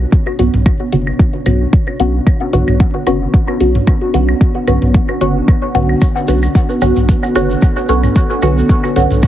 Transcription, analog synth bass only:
0.39 0.49 B1 medium
0.54 0.72 B1 medium
0.93 1.12 F#1 medium
1.46 1.66 B1 medium
2.00 2.19 B1 loud
2.53 2.64 B1 medium
2.68 2.86 B1 medium
3.07 3.26 F#1 medium
3.61 3.80 B1 medium
4.14 4.34 B1 loud
4.68 4.78 B1 medium
4.82 5.00 B1 medium
5.21 5.41 F#1 medium
5.75 5.94 B1 medium
6.28 6.48 B1 loud
6.82 6.92 B1 medium
6.97 7.15 B1 medium
7.35 7.55 F#1 medium
7.89 8.09 B1 medium
8.43 8.62 B1 loud
8.96 9.06 B1 medium
9.11 9.27 B1 medium

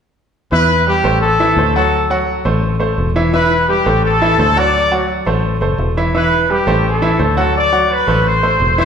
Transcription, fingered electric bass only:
0.52 1.01 E2 medium
1.04 1.53 A1 medium
1.56 2.39 D2 loud
2.45 2.94 A1 medium
2.98 3.80 E1 medium
3.86 4.35 A1 medium
4.38 5.20 D2 medium
5.27 5.59 A1 medium
5.61 5.78 F#1 medium
5.78 6.61 E1 medium
6.67 7.16 A1 medium
7.19 8.01 D2 medium
8.08 8.56 A1 medium
8.60 8.85 E1 loud

